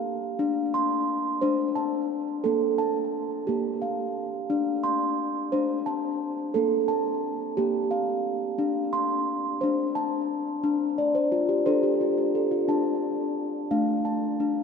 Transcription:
0.00 0.18 A#3 medium
0.00 0.74 F5 medium
0.39 1.08 D4 loud
0.74 1.77 C6 medium
1.41 2.24 D4 medium
1.41 2.11 C5 medium
1.76 2.77 A5 medium
2.44 3.26 A#3 medium
2.44 3.13 A4 medium
2.78 3.82 A5 medium
3.47 4.29 A#3 medium
3.47 4.16 G4 medium
3.82 4.85 F5 medium
4.50 5.19 D4 medium
4.84 5.87 C6 medium
5.52 6.34 D4 medium
5.52 6.21 C5 medium
5.86 6.87 A5 medium
6.54 7.36 A#3 medium
6.54 7.23 A4 medium
6.88 7.91 A5 medium
7.57 8.39 A#3 medium
7.57 8.26 G4 medium
7.91 8.94 F5 medium
8.58 9.28 D4 medium
8.93 9.96 C6 medium
9.61 10.44 D4 medium
9.61 10.30 C5 medium
9.95 10.98 A5 medium
10.63 11.32 D4 medium
10.98 11.30 D5 medium
11.15 11.47 C5 medium
11.32 11.64 F4 medium
11.49 11.81 G4 medium
11.66 12.48 D4 medium
11.66 11.99 A4 medium
11.66 12.35 C5 medium
11.83 12.15 G4 medium
12.01 12.33 F4 medium
12.18 12.50 G4 medium
12.35 12.67 A4 medium
12.51 12.83 F4 medium
12.68 13.37 D4 medium
12.68 13.71 A5 medium
13.71 14.25 A3 medium
13.71 14.39 D4 medium
13.71 14.63 F5 medium
14.05 14.63 A5 medium
14.40 14.63 D4 medium

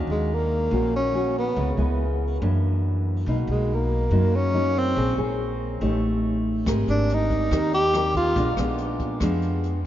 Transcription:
0.00 0.70 D#3 medium
0.00 0.28 A#3 medium
0.00 0.28 C#4 medium
0.00 0.28 F#4 medium
0.07 0.67 D#2 medium
0.07 0.35 G#3 medium
0.34 0.95 A#3 medium
0.71 1.52 A#1 medium
0.71 1.55 A#2 medium
0.71 0.99 A#3 medium
0.71 0.99 C#4 soft
0.71 0.99 F#4 medium
0.96 1.34 C#4 medium
1.13 1.42 A#3 medium
1.13 1.43 C#4 medium
1.13 1.43 F#4 medium
1.39 1.77 B3 medium
1.56 1.76 C#2 medium
1.56 2.39 C#3 medium
1.56 1.69 G#3 medium
1.56 1.69 B3 medium
1.56 1.69 E4 medium
1.77 2.37 C#2 medium
1.77 2.38 G#3 medium
1.77 2.39 B3 medium
1.77 2.38 E4 medium
2.42 3.23 F#2 loud
2.42 3.25 F#2 medium
2.42 3.23 E3 medium
2.42 3.24 A#3 medium
2.42 3.24 D4 medium
3.26 3.46 B1 loud
3.26 4.10 B2 medium
3.26 3.84 F#3 medium
3.26 3.84 A#3 medium
3.26 3.85 D#4 medium
3.47 4.07 B1 medium
3.47 3.76 G#3 medium
3.74 4.37 A#3 medium
4.11 4.92 F#2 loud
4.11 4.94 F#2 medium
4.11 4.51 F#3 medium
4.11 4.51 A#3 soft
4.11 4.51 D#4 medium
4.36 4.80 C#4 loud
4.54 4.82 F#3 soft
4.54 4.83 A#3 medium
4.54 4.83 D#4 medium
4.78 5.19 C4 medium
4.96 5.16 A#1 loud
4.96 5.79 A#3 medium
4.96 5.14 C#4 soft
4.96 5.15 G#4 medium
4.96 5.15 C5 medium
5.17 5.77 A#1 medium
5.17 5.78 C#4 medium
5.17 5.78 G#4 medium
5.17 5.78 C5 medium
5.81 6.62 A1 loud
5.81 6.64 A3 medium
5.81 6.63 D#4 medium
5.81 6.63 G4 medium
5.81 6.64 C#5 medium
6.66 6.86 G#1 loud
6.66 7.50 G#3 soft
6.66 7.49 C4 medium
6.66 7.48 G4 medium
6.66 7.49 A#4 medium
6.66 kick medium
6.66 cross-stick medium
6.66 closed hi-hat medium
6.87 7.47 G#1 medium
6.87 7.15 D4 medium
6.87 closed hi-hat soft
7.09 closed hi-hat soft
7.14 7.74 D#4 medium
7.30 kick soft
7.30 closed hi-hat soft
7.51 8.32 D#2 loud
7.51 8.34 D#3 medium
7.51 7.79 C4 medium
7.51 7.79 G4 medium
7.51 7.79 A#4 medium
7.51 kick medium
7.51 cross-stick medium
7.51 closed hi-hat soft
7.73 8.13 G4 loud
7.73 closed hi-hat soft
7.93 8.35 C4 medium
7.93 8.35 G4 medium
7.93 8.35 A#4 medium
7.93 cross-stick medium
7.93 closed hi-hat soft
8.15 8.56 F4 medium
8.15 kick soft
8.15 closed hi-hat soft
8.36 8.56 A#1 loud
8.36 9.19 A#2 medium
8.36 8.49 G#3 medium
8.36 8.49 B3 medium
8.36 8.49 D4 medium
8.36 kick medium
8.36 closed hi-hat medium
8.57 9.17 A#1 medium
8.57 9.18 G#3 medium
8.57 9.19 B3 medium
8.57 9.19 D4 medium
8.57 cross-stick medium
8.57 closed hi-hat soft
8.78 closed hi-hat soft
9.00 kick soft
9.00 closed hi-hat soft
9.20 9.87 F2 medium
9.20 9.87 F3 medium
9.20 9.79 G#3 medium
9.20 9.79 B3 medium
9.20 9.79 D4 medium
9.20 kick medium
9.20 cross-stick medium
9.20 closed hi-hat medium
9.42 closed hi-hat soft
9.63 closed hi-hat soft

